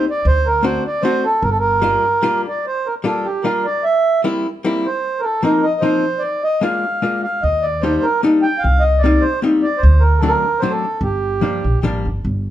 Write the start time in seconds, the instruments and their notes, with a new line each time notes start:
0.10 accordion D5
0.25 upright bass D2, accordion C5
0.46 accordion A#4
0.63 hollow-body jazz guitar A3 C4 D4 F#4, accordion C5
0.87 accordion D5
1.02 hollow-body jazz guitar A3 C4 D4 F#4, accordion C5
1.25 accordion A4
1.43 upright bass G1, accordion A#4
1.50 accordion A4
1.60 accordion A#4
1.82 hollow-body jazz guitar G3 A#3 D4 F4
2.22 hollow-body jazz guitar G3 A#3 D4 F4
2.49 accordion D5
2.67 accordion C5
2.87 accordion A#4
3.04 hollow-body jazz guitar G3 A#3 D4 F4, accordion A4
3.25 accordion G4
3.43 hollow-body jazz guitar G3 A#3 D4 F4, accordion A#4
3.66 accordion D5
3.84 accordion E5
4.24 hollow-body jazz guitar G3 A#3 C4 E4
4.64 hollow-body jazz guitar G3 A#3 C4 E4
4.86 accordion C5
5.20 accordion A4 A#4
5.43 hollow-body jazz guitar F3 A#3 C4 D#4, accordion A#4
5.63 accordion D#5
5.81 hollow-body jazz guitar F3 A#3 C4 D#4, accordion C5
6.19 accordion D5
6.44 accordion D#5
6.61 hollow-body jazz guitar G#3 A#3 D4 F4, accordion F5
7.02 hollow-body jazz guitar G#3 A#3 D4 F4
7.23 accordion F5
7.43 upright bass D#2, accordion D#5
7.62 accordion D5
7.82 hollow-body jazz guitar G3 A#3 D4 D#4, accordion C5
8.03 accordion A#4
8.23 hollow-body jazz guitar G3 A#3 D4 D#4
8.42 accordion G5
8.58 accordion F5
8.64 upright bass C2
8.80 accordion D#5
8.99 accordion D5
9.04 hollow-body jazz guitar G3 A#3 C4 D#4
9.21 accordion C5
9.42 hollow-body jazz guitar G3 A#3 C4 D#4
9.62 accordion D5
9.78 accordion C5
9.83 upright bass D2
10.00 accordion A#4
10.19 hollow-body jazz guitar F#3, accordion A4
10.23 hollow-body jazz guitar A3 C4 D4
10.28 accordion A#4
10.59 hollow-body jazz guitar F#3 A3 D4, accordion C5
10.64 hollow-body jazz guitar C4
10.70 accordion A4
11.01 upright bass G1, accordion G4
11.41 hollow-body jazz guitar F3 G3 A#3 D4
11.64 upright bass A#1
11.83 upright bass A1, hollow-body jazz guitar F3 G3 A#3 D4
12.05 upright bass G1
12.25 upright bass G1